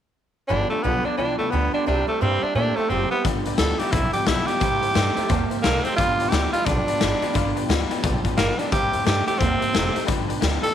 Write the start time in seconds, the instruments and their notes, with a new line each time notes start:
0.48 upright bass G1, steel-string acoustic guitar G2 D3 F3 B3 F4 G4, clean electric guitar G2 D3, tenor saxophone D4, honky-tonk piano B4 D5 G5
0.70 steel-string acoustic guitar F3 B3 F4 G4, tenor saxophone A3, honky-tonk piano B4 D5 G5, muted upright bass stroke
0.83 upright bass B1, steel-string acoustic guitar G2 D3 F3 B3 F4 G4, clean electric guitar G2 D3, tenor saxophone B3, honky-tonk piano B4 D5 G5
1.04 clean electric guitar G2 D3, steel-string acoustic guitar F3 B3 F4 G4, tenor saxophone D4, honky-tonk piano B4 D5 A5, muted upright bass stroke
1.17 upright bass B1, clean electric guitar G2 E3, steel-string acoustic guitar F3 B3 F4 G4, tenor saxophone D4, honky-tonk piano B4 D5 G5
1.38 upright bass C2, steel-string acoustic guitar F3 B3 F4 G4, tenor saxophone A3, honky-tonk piano B4 D5 G5
1.51 upright bass D2, steel-string acoustic guitar G2 D3 F3 B3 F4 G4, clean electric guitar G2 D3, tenor saxophone B3, honky-tonk piano B4 D5 G5
1.72 clean electric guitar G2 D3, steel-string acoustic guitar F3 B3 F4 G4, tenor saxophone D4, honky-tonk piano B4 D5 G5
1.86 upright bass C2, steel-string acoustic guitar C3 G3 A#3 E4 G4, clean electric guitar C3 G3, tenor saxophone D4, honky-tonk piano C5 E5 G5
2.07 tenor saxophone A3, steel-string acoustic guitar A#3 E4 G4, honky-tonk piano C5 E5 G5, muted upright bass stroke
2.21 upright bass G2, steel-string acoustic guitar C3 G3 A#3 E4 G4, clean electric guitar C3 G3, tenor saxophone C4, honky-tonk piano C5 E5 A#5
2.42 clean electric guitar C3 G3, steel-string acoustic guitar A#3 E4 G4, tenor saxophone D4, honky-tonk piano C5 E5 A5, muted upright bass stroke
2.55 upright bass A#2, clean electric guitar C3 A3, steel-string acoustic guitar G3 A#3 E4 G4, tenor saxophone D4, honky-tonk piano C5 E5 G5
2.76 tenor saxophone A3, steel-string acoustic guitar A#3 E4 G4, honky-tonk piano C5 E5 G5, muted upright bass stroke
2.89 upright bass F#1, clean electric guitar C3 G3, steel-string acoustic guitar C3 G3 A#3 E4 G4, tenor saxophone C4, honky-tonk piano C5 E5 G5
3.11 clean electric guitar C3 G3, steel-string acoustic guitar A#3 E4 G4, tenor saxophone B3, honky-tonk piano C5 E5 G5, muted upright bass stroke
3.24 upright bass G1, steel-string acoustic guitar G2 D3 F3 B3 F4 G4, clean electric guitar G2 D3, honky-tonk piano B4 D5 G5, kick, closed hi-hat
3.45 upright bass B1, steel-string acoustic guitar B3 F4 G4, honky-tonk piano B4 D5 G5, closed hi-hat
3.49 steel-string acoustic guitar F3
3.58 upright bass D2, steel-string acoustic guitar G2 D3 F3 B3 F4 G4, clean electric guitar G2 E3, tenor saxophone A4, honky-tonk piano B4 D5 G5, snare, closed hi-hat
3.79 clean electric guitar G2 E3, steel-string acoustic guitar F3 B3 F4 G4, tenor saxophone G4, honky-tonk piano B4 D5 E5, closed hi-hat
3.91 upright bass B1, clean electric guitar G2 F3, steel-string acoustic guitar F3 B3 F4, tenor saxophone E4, honky-tonk piano B4 D5 G5, kick, closed hi-hat
3.96 steel-string acoustic guitar G4
4.13 steel-string acoustic guitar F3 B3 F4 G4, tenor saxophone G4, honky-tonk piano B4 D5, muted upright bass stroke, closed hi-hat
4.17 honky-tonk piano G5
4.26 upright bass B1, steel-string acoustic guitar G2 D3 F3 B3 F4 G4, clean electric guitar G2 E3, tenor saxophone E4, honky-tonk piano B4 D5 G5, snare, closed hi-hat
4.47 clean electric guitar G2 E3, steel-string acoustic guitar F3 B3 F4 G4, tenor saxophone G4, honky-tonk piano B4 D5 F5, muted upright bass stroke, closed hi-hat
4.60 upright bass C2, steel-string acoustic guitar C3 G3 A#3 E4 G4, clean electric guitar C3 G3, honky-tonk piano C5 E5 G5, kick, closed hi-hat
4.81 upright bass E2, steel-string acoustic guitar A#3 E4 G4, honky-tonk piano C5 E5 G5, closed hi-hat
4.94 upright bass G2, steel-string acoustic guitar C3 G3 A#3 E4 G4, clean electric guitar C3 A3, honky-tonk piano C5 E5 G5, snare, closed hi-hat
5.16 clean electric guitar C3 A3, steel-string acoustic guitar A#3 E4 G4, honky-tonk piano C5 E5 G5, muted upright bass stroke, closed hi-hat
5.29 upright bass E2, clean electric guitar C3 A#3, steel-string acoustic guitar G3 A#3 E4 G4, honky-tonk piano C5 E5 A5, kick, closed hi-hat
5.50 steel-string acoustic guitar A#3 E4 G4, honky-tonk piano C5 E5 G5, muted upright bass stroke, closed hi-hat
5.62 upright bass C2, clean electric guitar C3 A3, steel-string acoustic guitar C3 G3 A#3 E4 G4, tenor saxophone A#3, honky-tonk piano C5 E5, snare, closed hi-hat
5.66 honky-tonk piano A5
5.83 clean electric guitar C3 A3, tenor saxophone C4, steel-string acoustic guitar E4 G4, honky-tonk piano C5 E5 G5, closed hi-hat
5.88 steel-string acoustic guitar A#3
5.96 upright bass G1, clean electric guitar G2 D3, steel-string acoustic guitar G2 D3 F3 B3 F4 G4, tenor saxophone F4, honky-tonk piano B4 D5, kick, closed hi-hat
6.00 honky-tonk piano G5
6.19 upright bass B1, steel-string acoustic guitar F3 B3 F4 G4, honky-tonk piano B4 D5 G5, closed hi-hat
6.29 upright bass D2, steel-string acoustic guitar G2 D3 F3 B3 F4 G4, clean electric guitar G2 E3, tenor saxophone G4, honky-tonk piano B4, snare, closed hi-hat
6.33 honky-tonk piano D5 G5
6.52 clean electric guitar G2 E3, steel-string acoustic guitar F3 B3 F4 G4, tenor saxophone F4, honky-tonk piano B4 D5 G5, closed hi-hat
6.65 upright bass B1, clean electric guitar G2 F3, steel-string acoustic guitar F3 B3 F4 G4, tenor saxophone D4, honky-tonk piano B4 D5, kick, closed hi-hat
6.69 honky-tonk piano G5
6.87 steel-string acoustic guitar F3 B3 F4 G4, honky-tonk piano B4 D5 G5, muted upright bass stroke, closed hi-hat
7.00 upright bass G1, clean electric guitar G2 E3, steel-string acoustic guitar G2 D3 F3 B3 F4 G4, honky-tonk piano B4 D5 G5, snare, closed hi-hat
7.21 clean electric guitar G2 E3, steel-string acoustic guitar F3 B3 F4 G4, honky-tonk piano B4 D5 G5, muted upright bass stroke, closed hi-hat
7.34 upright bass G1, clean electric guitar G2 D3, steel-string acoustic guitar G2 D3 F3 B3 F4 G4, honky-tonk piano B4 D5 F5, kick, closed hi-hat
7.55 upright bass B1, steel-string acoustic guitar F3 B3 F4 G4, honky-tonk piano B4 D5 G5, closed hi-hat
7.69 upright bass D2, steel-string acoustic guitar G2 D3 F3 B3 F4 G4, clean electric guitar G2 E3, honky-tonk piano B4 D5 G5, snare, closed hi-hat
7.90 clean electric guitar G2 E3, steel-string acoustic guitar F3 B3 F4 G4, honky-tonk piano B4 D5 G5, closed hi-hat
8.02 upright bass B1, clean electric guitar G2 F3, steel-string acoustic guitar F3 B3 F4 G4, honky-tonk piano B4 D5 G5, kick, closed hi-hat
8.24 steel-string acoustic guitar F3 B3 F4 G4, honky-tonk piano B4 D5 G5, muted upright bass stroke, kick, closed hi-hat
8.37 upright bass G1, steel-string acoustic guitar G2 D3 F3 B3 F4 G4, clean electric guitar G2 E3, tenor saxophone A#3, honky-tonk piano B4 D5 G5, snare, closed hi-hat
8.58 clean electric guitar G2 E3, steel-string acoustic guitar F3 B3 F4 G4, tenor saxophone D4, honky-tonk piano B4 D5 G5, muted upright bass stroke, closed hi-hat
8.71 upright bass C2, clean electric guitar C3 G3, steel-string acoustic guitar C3 G3 A#3 E4 G4, tenor saxophone G4, honky-tonk piano C5 E5 G5, kick, closed hi-hat
8.92 upright bass E2, steel-string acoustic guitar A#3 E4 G4, honky-tonk piano C5 E5 G5, closed hi-hat
9.05 upright bass G2, clean electric guitar C3 A3, steel-string acoustic guitar C3 G3 A#3 E4 G4, tenor saxophone G4, honky-tonk piano C5 E5 G5, snare, closed hi-hat
9.26 clean electric guitar C3 A3, steel-string acoustic guitar A#3 E4 G4, tenor saxophone G4, honky-tonk piano C5 E5 G5, muted upright bass stroke, closed hi-hat
9.39 upright bass E2, clean electric guitar C3 A#3, steel-string acoustic guitar G3 A#3 E4 G4, tenor saxophone C4, honky-tonk piano C5 E5 G5, kick, closed hi-hat
9.60 steel-string acoustic guitar A#3 E4 G4, honky-tonk piano C5 E5 G5, muted upright bass stroke, closed hi-hat
9.73 upright bass F1, steel-string acoustic guitar C3 G3 A#3 E4 G4, clean electric guitar C3 A3, honky-tonk piano C5 E5 A#5, snare, closed hi-hat
9.93 clean electric guitar C3 A3, steel-string acoustic guitar A#3 E4 G4, honky-tonk piano C5 E5 G5, muted upright bass stroke, closed hi-hat
10.06 upright bass G1, clean electric guitar G2 D3, steel-string acoustic guitar G2 D3 F3 B3 D4 G4, honky-tonk piano B4 D5 G5, kick, closed hi-hat
10.28 upright bass B1, steel-string acoustic guitar B3 D4 G4, honky-tonk piano B4 D5 G5, closed hi-hat
10.32 steel-string acoustic guitar F3
10.41 upright bass D2, clean electric guitar G2 E3, steel-string acoustic guitar G2 D3 F3 B3 D4 G4, honky-tonk piano B4 D5 G5, snare, closed hi-hat
10.62 clean electric guitar G2 E3, steel-string acoustic guitar B3 D4 G4, tenor saxophone A4, honky-tonk piano B4 D5 G5, closed hi-hat
10.66 steel-string acoustic guitar F3